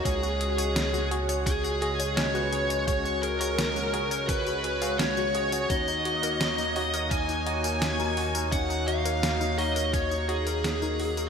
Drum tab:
HH |x-xxx-xxx-xxx-xx|x-xxx-xxx-xxx-xx|x-xxx-oxx-xxx-ox|x-xxx-oxx-xxx-ox|
TB |xx-xxx-xxx-xxx-x|xx-xxx-xxx-xxx-x|xx-xxx-xxx-xxx-x|xx-xxx-xxx-xxx-x|
SD |----o-------o---|----o-------o---|----o-------o---|----o-------o---|
BD |o-------o-------|o-------o-------|o-------o-------|o-------o-------|